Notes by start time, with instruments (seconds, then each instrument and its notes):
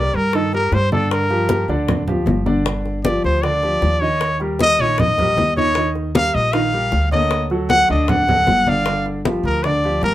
Already playing: grand piano G3 G4 A#4, trumpet D5
0.13 upright bass G2, trumpet A#4, high bongo, high conga
0.33 grand piano D#3 D#4 D#5, trumpet A4, high bongo, high conga
0.53 grand piano G3 G4 A#4, trumpet A#4, high bongo, high conga
0.71 upright bass G2, trumpet C5, high bongo, low bongo, high conga
0.92 grand piano D3 D4 D5, trumpet A4, high conga
1.11 trumpet A#4, high bongo, high conga
1.30 grand piano F3 F4 G4, high bongo, high conga
1.49 grand piano F3 F4 G4, high bongo, high conga
1.68 upright bass D2, grand piano D3 D4 D5, high bongo, high conga
1.88 high bongo, high conga, low conga
2.08 grand piano F3 F4 G4, high bongo, high conga, low conga
2.26 upright bass G1, high bongo, low bongo, high conga
2.46 grand piano D3 D4 D5, high conga
2.66 grand piano D3 D4 D5, high bongo, high conga
2.86 high bongo, high conga
3.05 grand piano F3 F4 G4, trumpet D5, high bongo, high conga
3.24 upright bass D2, trumpet C5, high bongo, high conga
3.43 grand piano D3 D4 D5, trumpet D5, high bongo, high conga
3.63 grand piano F3 F4 G4, high bongo, high conga
3.82 upright bass D#2, high bongo, low bongo, high conga
4.00 grand piano D#3 D#4 D#5, trumpet C#5
4.21 high bongo, high conga
4.40 grand piano G3 G4 A#4, high bongo, high conga
4.59 grand piano G3 G4 A#4, trumpet D#5, high bongo, high conga
4.79 upright bass A#1, grand piano D#3 D#4 D#5, trumpet C#5, high bongo, high conga
4.98 trumpet D#5, high bongo, high conga, low conga
5.18 grand piano G3 G4 A#4, high bongo, high conga, low conga
5.36 upright bass D#2, high bongo, low bongo, high conga
5.57 grand piano D#3 D#4 D#5, trumpet C#5, high conga
5.75 grand piano D#3 D#4 D#5, high bongo, high conga
5.95 high bongo, high conga
6.15 grand piano G3 G4 A#4, trumpet F5, high bongo, high conga
6.34 upright bass A#1, trumpet D#5, high bongo, high conga
6.53 grand piano D#3 D#4 D#5, trumpet F5, high bongo, high conga
6.73 grand piano G3 G4 A#4, high bongo, high conga
6.92 upright bass D2, high bongo, low bongo, high conga
7.12 grand piano D3 A#3 C#5, trumpet D#5, high conga
7.31 high bongo, high conga
7.50 grand piano F#3 F#4 A4, high bongo, high conga
7.70 grand piano F#3 F#4 A4, trumpet F#5, high bongo, high conga
7.89 upright bass D2, grand piano D3 D4 D5, trumpet D#5, high bongo, high conga
8.08 trumpet F#5, high bongo, high conga, low conga
8.27 grand piano F#3 F#4 A4, high bongo, high conga, low conga
8.47 upright bass G1, high bongo, low bongo, high conga
8.67 grand piano D3 D4 D5, trumpet F5, high conga
8.86 grand piano D3 D4 D5, high bongo, high conga
9.06 high bongo, high conga
9.25 grand piano F3 F4 G4, high bongo, high conga
9.43 upright bass D2, trumpet A#4, high bongo, high conga
9.64 grand piano D3 D4 D5, trumpet D5, high bongo, high conga
9.84 grand piano F3 F4 G4, high bongo, high conga
10.02 upright bass G1, trumpet A#4, high bongo, low bongo, high conga